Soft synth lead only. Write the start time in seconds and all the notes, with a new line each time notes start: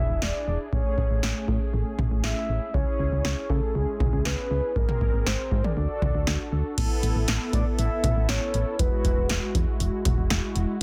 Already playing: E5
0.23 D5
0.48 D5
0.73 C#5
2.24 E5
2.74 C#5
3.24 C#5
3.50 A4
3.75 G#4
4.25 B4
4.76 A#4
5.26 C5
5.64 D5
5.77 D5
7.54 D5
7.79 E5
8.29 C#5
8.80 B4